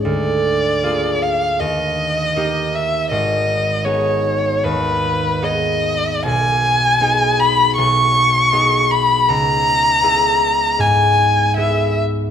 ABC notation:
X:1
M:4/4
L:1/8
Q:1/4=78
K:G#m
V:1 name="Violin"
=d3 ^e ^d3 =e | d2 c2 B2 d2 | g3 b c'3 b | a4 g2 e z |]
V:2 name="Harp"
[=D,,G,G]2 [A,^EG]2 ^D,,2 [A,D=G]2 | G,,,2 [B,DG]2 D,,2 [B,DG]2 | B,,,2 [B,DG]2 B,,,2 [B,DG]2 | C,,2 [B,EG]2 G,,2 [B,EG]2 |]